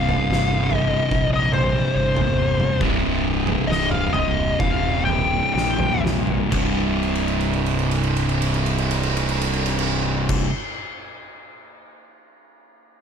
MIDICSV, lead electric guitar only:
0, 0, Header, 1, 2, 480
1, 0, Start_track
1, 0, Key_signature, -3, "minor"
1, 0, Tempo, 834492
1, 1611, Tempo, 892857
1, 1612, Time_signature, 4, 2, 24, 8
1, 2571, Tempo, 941915
1, 3051, Tempo, 1003344
1, 6631, End_track
2, 0, Start_track
2, 0, Title_t, "Lead electric guitar"
2, 0, Program_c, 0, 29
2, 0, Note_on_c, 0, 77, 91
2, 447, Note_off_c, 0, 77, 0
2, 447, Note_on_c, 0, 75, 91
2, 738, Note_off_c, 0, 75, 0
2, 770, Note_on_c, 0, 75, 92
2, 881, Note_off_c, 0, 75, 0
2, 883, Note_on_c, 0, 72, 86
2, 1115, Note_off_c, 0, 72, 0
2, 1128, Note_on_c, 0, 72, 98
2, 1601, Note_off_c, 0, 72, 0
2, 2083, Note_on_c, 0, 75, 85
2, 2201, Note_off_c, 0, 75, 0
2, 2207, Note_on_c, 0, 77, 81
2, 2324, Note_off_c, 0, 77, 0
2, 2324, Note_on_c, 0, 75, 85
2, 2564, Note_off_c, 0, 75, 0
2, 2575, Note_on_c, 0, 77, 99
2, 2805, Note_off_c, 0, 77, 0
2, 2807, Note_on_c, 0, 79, 77
2, 3044, Note_off_c, 0, 79, 0
2, 3057, Note_on_c, 0, 79, 101
2, 3280, Note_off_c, 0, 79, 0
2, 6631, End_track
0, 0, End_of_file